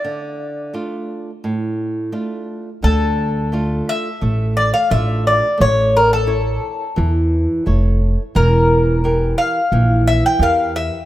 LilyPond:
<<
  \new Staff \with { instrumentName = "Bouzouki" } { \time 4/4 \key d \minor \tempo 4 = 87 d''2.~ d''8 r8 | a'4. e''4 d''16 f''16 e''8 d''8 | cis''8 bes'16 a'4. r4. r16 | bes'4. f''4 e''16 g''16 f''8 e''8 | }
  \new Staff \with { instrumentName = "Nylon-string guitar" } { \time 4/4 \key d \minor d4 <a d' f'>4 a,4 <a d' f'>4 | d4 <a d' f'>4 a4 <a d' f'>4 | a4 <e' a' cis''>4 e4 <e' a' cis''>4 | e4 <e g' bes'>4 e4 <e g' bes'>4 | }
  \new Staff \with { instrumentName = "Upright bass" } { \clef bass \time 4/4 \key d \minor r1 | d,2 a,,4 a,,4 | a,,2 e,4 f,,4 | e,,2 bes,,4 e,4 | }
>>